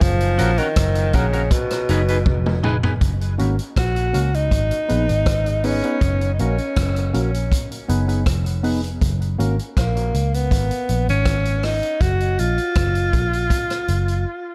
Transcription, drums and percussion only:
0.01 kick loud
0.01 closed hi-hat medium
0.20 closed hi-hat soft
0.39 closed hi-hat medium
0.58 closed hi-hat soft
0.76 kick loud
0.76 cross-stick loud
0.76 closed hi-hat loud
0.95 closed hi-hat medium
1.13 kick medium
1.13 closed hi-hat medium
1.33 closed hi-hat medium
1.51 kick loud
1.51 closed hi-hat medium
1.70 cross-stick medium
1.70 closed hi-hat medium
1.89 closed hi-hat medium
2.08 closed hi-hat soft
2.26 kick loud
2.26 high tom soft
2.46 mid tom medium
2.64 mid tom medium
2.83 floor tom medium
3.01 kick loud
3.01 closed hi-hat medium
3.21 closed hi-hat soft
3.39 closed hi-hat medium
3.59 closed hi-hat soft
3.76 kick loud
3.76 cross-stick loud
3.76 closed hi-hat medium
3.96 closed hi-hat soft
4.14 closed hi-hat medium
4.34 closed hi-hat medium
4.51 kick loud
4.51 closed hi-hat medium
4.71 closed hi-hat medium
4.89 closed hi-hat medium
5.09 closed hi-hat soft
5.26 kick loud
5.26 cross-stick loud
5.26 closed hi-hat medium
5.46 closed hi-hat medium
5.64 open hi-hat medium
5.84 closed hi-hat soft
6.01 kick medium
6.01 closed hi-hat medium
6.21 closed hi-hat soft
6.39 closed hi-hat medium
6.58 closed hi-hat soft
6.76 kick loud
6.76 cross-stick loud
6.76 closed hi-hat medium
6.96 closed hi-hat medium
7.14 closed hi-hat medium
7.34 closed hi-hat medium
7.52 kick medium
7.52 closed hi-hat loud
7.72 closed hi-hat medium
7.89 closed hi-hat medium
8.09 closed hi-hat soft
8.26 kick loud
8.26 cross-stick medium
8.26 closed hi-hat medium
8.46 closed hi-hat medium
8.64 open hi-hat medium
8.84 closed hi-hat soft
9.01 kick loud
9.01 closed hi-hat medium
9.22 closed hi-hat soft
9.40 closed hi-hat medium
9.59 closed hi-hat soft
9.77 kick loud
9.77 cross-stick loud
9.77 closed hi-hat medium
9.97 closed hi-hat medium
10.14 closed hi-hat medium
10.34 closed hi-hat medium
10.51 kick medium
10.51 closed hi-hat medium
10.71 closed hi-hat medium
10.89 closed hi-hat medium
11.09 closed hi-hat soft
11.26 kick medium
11.26 cross-stick loud
11.26 closed hi-hat medium
11.45 closed hi-hat medium
11.63 cross-stick medium
11.63 open hi-hat medium
11.83 closed hi-hat soft
12.01 kick loud
12.01 closed hi-hat medium
12.20 closed hi-hat soft
12.39 closed hi-hat medium
12.58 closed hi-hat soft
12.75 kick loud
12.75 cross-stick loud
12.75 closed hi-hat medium
12.95 closed hi-hat soft
13.13 kick medium
13.13 closed hi-hat medium
13.33 closed hi-hat medium
13.50 kick medium
13.50 closed hi-hat medium
13.70 cross-stick medium
13.70 closed hi-hat soft
13.88 closed hi-hat medium
14.08 closed hi-hat soft

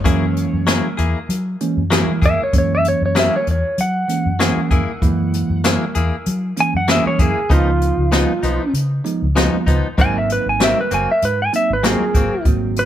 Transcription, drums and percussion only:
0.05 kick medium
0.05 closed hi-hat medium
0.36 closed hi-hat medium
0.67 snare loud
0.67 closed hi-hat medium
0.98 closed hi-hat medium
1.30 closed hi-hat medium
1.60 closed hi-hat medium
1.91 snare loud
1.91 closed hi-hat medium
2.22 kick loud
2.22 closed hi-hat medium
2.53 kick medium
2.53 closed hi-hat medium
2.85 closed hi-hat medium
3.15 snare loud
3.15 closed hi-hat medium
3.47 closed hi-hat medium
3.78 closed hi-hat medium
4.09 closed hi-hat medium
4.40 snare loud
4.40 closed hi-hat medium
4.71 kick loud
4.71 closed hi-hat medium
5.02 kick loud
5.02 closed hi-hat medium
5.33 closed hi-hat medium
5.64 snare loud
5.64 closed hi-hat medium
5.95 closed hi-hat medium
6.26 closed hi-hat medium
6.57 closed hi-hat medium
6.88 snare loud
6.88 closed hi-hat medium
7.19 kick loud
7.19 closed hi-hat medium
7.50 kick loud
7.50 closed hi-hat medium
7.81 closed hi-hat medium
8.12 snare loud
8.12 closed hi-hat medium
8.43 closed hi-hat medium
8.74 closed hi-hat medium
9.05 closed hi-hat medium
9.36 snare loud
9.36 closed hi-hat medium
9.67 kick loud
9.67 closed hi-hat medium
9.98 kick loud
9.98 closed hi-hat medium
10.29 closed hi-hat medium
10.60 snare loud
10.60 closed hi-hat medium
10.91 closed hi-hat medium
11.22 closed hi-hat medium
11.53 closed hi-hat medium
11.84 snare loud
11.84 closed hi-hat medium
12.14 kick medium
12.14 closed hi-hat medium
12.45 kick loud
12.45 closed hi-hat medium
12.76 closed hi-hat medium

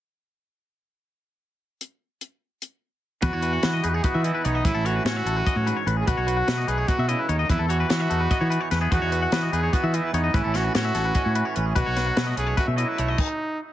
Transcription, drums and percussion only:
1.81 closed hi-hat medium
2.21 closed hi-hat soft
2.62 closed hi-hat medium
3.22 kick loud
3.22 closed hi-hat medium
3.42 closed hi-hat medium
3.63 snare medium
3.63 closed hi-hat medium
3.84 closed hi-hat medium
4.04 kick loud
4.04 closed hi-hat medium
4.24 closed hi-hat medium
4.45 closed hi-hat medium
4.65 kick loud
4.65 closed hi-hat medium
4.86 closed hi-hat medium
5.06 snare loud
5.06 closed hi-hat medium
5.27 closed hi-hat medium
5.47 kick loud
5.47 closed hi-hat medium
5.67 closed hi-hat medium
5.88 closed hi-hat medium
6.07 kick loud
6.07 closed hi-hat medium
6.28 closed hi-hat medium
6.48 snare medium
6.48 closed hi-hat medium
6.68 closed hi-hat medium
6.88 kick loud
6.88 closed hi-hat medium
7.09 closed hi-hat medium
7.29 closed hi-hat medium
7.50 kick medium
7.50 closed hi-hat medium
7.70 closed hi-hat medium
7.90 snare medium
7.90 closed hi-hat medium
8.11 closed hi-hat medium
8.31 kick loud
8.31 closed hi-hat medium
8.52 closed hi-hat medium
8.71 snare soft
8.71 closed hi-hat medium
8.92 kick loud
8.92 closed hi-hat medium
9.12 closed hi-hat soft
9.32 snare loud
9.32 closed hi-hat medium
9.53 closed hi-hat medium
9.73 kick loud
9.73 closed hi-hat medium
9.94 closed hi-hat medium
10.14 closed hi-hat medium
10.34 kick loud
10.34 closed hi-hat medium
10.55 snare soft
10.55 closed hi-hat medium
10.75 snare medium
10.75 closed hi-hat medium
10.95 snare soft
10.95 closed hi-hat medium
11.15 kick medium
11.15 closed hi-hat medium
11.35 closed hi-hat medium
11.56 closed hi-hat medium
11.76 kick loud
11.76 closed hi-hat medium
11.97 snare soft
11.97 closed hi-hat medium
12.17 snare loud
12.17 closed hi-hat medium
12.37 closed hi-hat medium
12.58 kick medium
12.58 closed hi-hat medium
12.78 closed hi-hat medium
12.98 closed hi-hat medium
13.18 kick medium
13.18 crash medium

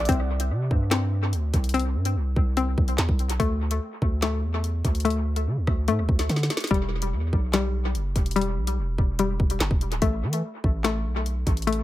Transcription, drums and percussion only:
0.05 closed hi-hat medium
0.09 kick loud
0.09 closed hi-hat medium
0.40 closed hi-hat medium
0.71 kick medium
0.91 snare loud
0.91 clap medium
0.91 closed hi-hat medium
1.33 closed hi-hat medium
1.54 kick medium
1.54 closed hi-hat medium
1.64 closed hi-hat medium
1.69 closed hi-hat medium
1.74 closed hi-hat medium
1.79 closed hi-hat medium
2.05 closed hi-hat medium
2.36 kick medium
2.57 closed hi-hat medium
2.78 kick loud
2.88 closed hi-hat medium
2.98 snare loud
2.98 clap medium
2.98 closed hi-hat medium
3.09 kick medium
3.19 closed hi-hat medium
3.30 closed hi-hat medium
3.40 kick loud
3.40 closed hi-hat medium
3.71 closed hi-hat medium
4.02 kick medium
4.22 snare loud
4.22 clap medium
4.22 closed hi-hat medium
4.64 closed hi-hat medium
4.85 kick medium
4.85 closed hi-hat medium
4.95 closed hi-hat medium
5.00 closed hi-hat medium
5.05 closed hi-hat medium
5.10 closed hi-hat medium
5.36 closed hi-hat medium
5.67 kick medium
5.67 cross-stick medium
5.88 closed hi-hat medium
6.09 kick loud
6.19 snare medium
6.19 closed hi-hat medium
6.29 snare medium
6.29 closed hi-hat medium
6.36 snare medium
6.43 snare medium
6.50 snare medium
6.50 closed hi-hat medium
6.57 snare loud
6.57 closed hi-hat medium
6.64 snare medium
6.64 closed hi-hat medium
6.71 kick loud
6.71 closed hi-hat soft
7.02 closed hi-hat medium
7.33 kick medium
7.53 snare loud
7.53 clap medium
7.53 closed hi-hat medium
7.95 closed hi-hat medium
8.16 kick medium
8.16 closed hi-hat medium
8.26 closed hi-hat medium
8.31 closed hi-hat medium
8.36 closed hi-hat medium
8.41 closed hi-hat medium
8.67 closed hi-hat medium
8.98 kick medium
9.19 closed hi-hat medium
9.40 kick loud
9.50 closed hi-hat medium
9.60 snare loud
9.60 clap medium
9.60 closed hi-hat medium
9.71 kick loud
9.81 closed hi-hat medium
9.92 closed hi-hat medium
10.02 kick loud
10.02 closed hi-hat medium
10.33 closed hi-hat medium
10.64 kick medium
10.84 snare loud
10.84 clap medium
10.84 closed hi-hat medium
11.26 closed hi-hat medium
11.47 kick medium
11.47 closed hi-hat medium
11.57 closed hi-hat medium
11.62 closed hi-hat medium
11.67 closed hi-hat medium
11.73 closed hi-hat medium

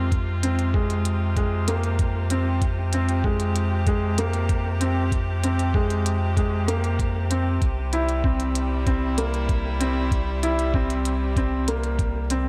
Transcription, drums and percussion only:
0.12 kick loud
0.12 closed hi-hat soft
0.43 closed hi-hat medium
0.59 closed hi-hat soft
0.74 kick loud
0.90 closed hi-hat soft
1.05 closed hi-hat medium
1.36 kick medium
1.36 closed hi-hat soft
1.68 closed hi-hat medium
1.83 closed hi-hat soft
1.99 kick loud
1.99 closed hi-hat soft
2.30 closed hi-hat medium
2.62 kick loud
2.62 closed hi-hat soft
2.93 closed hi-hat medium
3.09 closed hi-hat soft
3.24 kick loud
3.40 closed hi-hat soft
3.56 closed hi-hat medium
3.87 kick loud
3.87 closed hi-hat soft
4.18 closed hi-hat medium
4.33 closed hi-hat soft
4.49 kick loud
4.49 closed hi-hat soft
4.81 closed hi-hat medium
5.12 kick loud
5.12 closed hi-hat soft
5.44 closed hi-hat medium
5.59 closed hi-hat soft
5.74 kick loud
5.90 closed hi-hat soft
6.06 closed hi-hat medium
6.37 kick medium
6.37 closed hi-hat soft
6.68 closed hi-hat medium
6.84 closed hi-hat soft
6.99 kick loud
6.99 closed hi-hat soft
7.31 closed hi-hat medium
7.62 kick medium
7.62 closed hi-hat soft
7.93 closed hi-hat medium
8.09 closed hi-hat soft
8.24 kick loud
8.40 closed hi-hat soft
8.55 closed hi-hat medium
8.87 kick medium
8.87 closed hi-hat soft
9.18 closed hi-hat medium
9.34 closed hi-hat soft
9.49 kick medium
9.49 closed hi-hat soft
9.81 closed hi-hat medium
10.11 kick medium
10.11 closed hi-hat soft
10.43 closed hi-hat medium
10.59 closed hi-hat soft
10.74 kick loud
10.90 closed hi-hat soft
11.05 closed hi-hat medium
11.36 kick medium
11.36 closed hi-hat soft
11.68 closed hi-hat medium
11.84 closed hi-hat soft
11.99 kick loud
11.99 closed hi-hat soft
12.30 closed hi-hat medium

